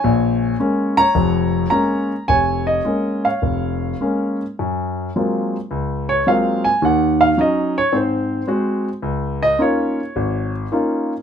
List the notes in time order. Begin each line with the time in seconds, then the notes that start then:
Already playing: C#5 G#5
0.04 A#1
0.60 G#3 A#3 C#4
0.97 C#5 A#5
1.15 F1 F2
1.70 G#3 A#3 C#4 A#5
2.28 F1 C#5 G#5
2.67 D#5
2.85 G#3 A#3 C#4
3.25 C#5 F5
3.42 F1
4.01 G#3 A#3 C#4
4.59 F#2
5.16 F#3 G#3 A#3 C4 F4
5.71 C#2
6.09 C#5
6.27 F#3 G#3 A#3 C4 F4 F5
6.64 G#5
6.82 D#2 D#3 F#5
7.21 F5
7.38 F#3 C#4 D#4 D#5
7.78 C#5
7.93 G#2 C4
7.97 C5
8.47 G#3 C4 F#4
9.02 C#2
9.43 D#5
9.59 A#3 C#4 D#4 F4 C#5
10.16 G#1
10.72 A#3 C#4 D#4 F4